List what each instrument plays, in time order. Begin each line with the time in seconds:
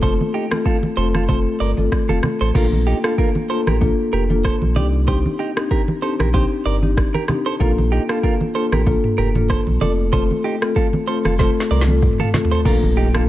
Already playing: sub bass F1
0.02 marimba A3 C4 F4 A4, clean electric guitar A4 C5, kick, low conga, shaker
0.20 high conga
0.34 clean electric guitar D#4 G4, shaker
0.51 marimba A3 C4 F4 A4, cross-stick, high conga, shaker
0.65 clean electric guitar F4 A4, kick, shaker
0.83 high conga
0.97 sub bass F1, marimba A3 C4 F4 A4, clean electric guitar A4 C5, shaker
1.14 clean electric guitar F4 A4, cross-stick, high conga, shaker
1.29 marimba A3 C4 F4 A4, clean electric guitar A4 C5, kick, low conga, shaker
1.60 sub bass G1, clean electric guitar A#4 D5, shaker
1.77 sub bass G1, marimba A3 C4 F4 A4, high conga, shaker
1.92 kick, cross-stick, shaker
2.09 sub bass F1, marimba A3 C4 F4 A4, clean electric guitar F4 A4, high conga
2.23 cross-stick, high conga, low conga, shaker
2.41 sub bass A1, clean electric guitar A4 C5, shaker
2.55 sub bass A#1, marimba A#3 D4 F4 A4, clean electric guitar F4 A#4, kick, crash, low conga, shaker
2.73 high conga
2.87 clean electric guitar D#4 G4, shaker
3.04 marimba A#3 D4 F4 A4, clean electric guitar F4 A4, cross-stick, shaker
3.18 clean electric guitar F4 A#4, kick, shaker
3.35 high conga
3.49 marimba A#3 D4 F4 A4, clean electric guitar A4 C5, shaker
3.67 sub bass A1, clean electric guitar G4 A#4, cross-stick, high conga, shaker
3.81 marimba A#3 D4 F4 A4, kick, low conga, shaker
4.13 sub bass F1, clean electric guitar G4 A#4, shaker
4.30 marimba A#3 D4 F4 A4, high conga, shaker
4.45 clean electric guitar A4 C5, kick, cross-stick, shaker
4.62 sub bass A#1, high conga
4.76 sub bass C2, marimba C4 D4 D#4 G4, clean electric guitar G4 D5, high conga, low conga, shaker
4.94 shaker
5.07 marimba C4 D4 D#4 G4, clean electric guitar G4 C5, kick, low conga, shaker
5.26 high conga
5.39 clean electric guitar D#4 G4, shaker
5.56 marimba C4 D4 D#4 G4, cross-stick, shaker
5.71 clean electric guitar G4 A#4, kick, shaker
5.88 high conga
6.02 marimba C4 D4 D#4 G4, clean electric guitar A4 C5, shaker
6.20 sub bass A#1, clean electric guitar G4 A#4, cross-stick, high conga, shaker
6.34 marimba C4 D4 D#4 G4, clean electric guitar G4 C5, kick, low conga, shaker
6.66 sub bass G1, clean electric guitar A#4 D5, shaker
6.83 marimba C4 D4 D#4 G4, high conga, shaker
6.97 kick, cross-stick, shaker
7.14 clean electric guitar G4 A#4, high conga
7.28 marimba C4 D4 D#4 G4, cross-stick, high conga, low conga, shaker
7.46 clean electric guitar A4 C5, shaker
7.60 sub bass A#1, marimba A#3 D4 F4 A4, clean electric guitar F4 A#4, kick, low conga, shaker
7.78 high conga
7.92 clean electric guitar D#4 G4, shaker
8.09 marimba A#3 D4 F4 A4, clean electric guitar F4 A4, cross-stick, shaker
8.23 clean electric guitar F4 A#4, kick, shaker
8.41 high conga
8.55 marimba A#3 D4 F4 A4, clean electric guitar A4 C5, shaker
8.72 sub bass A1, clean electric guitar G4 A#4, cross-stick, high conga, shaker
8.86 marimba A#3 D4 F4 A4, kick, low conga, shaker
9.04 mid tom
9.18 sub bass F1, clean electric guitar G4 A#4, mid tom, shaker
9.35 marimba A#3 D4 F4 A4, mid tom, high conga, shaker
9.50 clean electric guitar A4 C5, kick, cross-stick, shaker
9.67 sub bass A#1, high conga
9.81 sub bass F1, marimba A3 C4 F4 A4, clean electric guitar A4 D5, high conga, low conga, shaker
9.99 shaker
10.13 marimba A3 C4 F4 A4, clean electric guitar A4 C5, kick, low conga, shaker
10.31 high conga
10.44 clean electric guitar D#4 G4, shaker
10.62 marimba A3 C4 F4 A4, cross-stick, shaker
10.76 clean electric guitar F4 A4, kick, shaker
10.93 high conga
11.07 marimba A3 C4 F4 A4, clean electric guitar A4 C5, shaker
11.25 sub bass F1, clean electric guitar F4 A4, cross-stick, high conga, shaker
11.39 marimba A3 C4 F4 A4, clean electric guitar A4 C5, kick, snare, low conga, shaker
11.60 snare
11.71 sub bass C2, clean electric guitar A#4 D5, shaker
11.81 snare
11.88 marimba A3 C4 F4 A4, high conga, shaker
12.02 kick, mid tom, shaker
12.13 mid tom
12.19 clean electric guitar F4 A4, high conga
12.23 mid tom
12.33 marimba A3 C4 F4 A4, snare, high conga, low conga, shaker
12.45 floor tom
12.52 clean electric guitar A4 C5, floor tom, shaker
12.65 sub bass A#1, marimba A#3 D4 F4 A4, clean electric guitar F4 A#4, kick, crash, impact, low conga
12.83 high conga
12.97 clean electric guitar D#4 G4
13.14 marimba A#3 D4 F4 A4, clean electric guitar F4 A4, cross-stick, high conga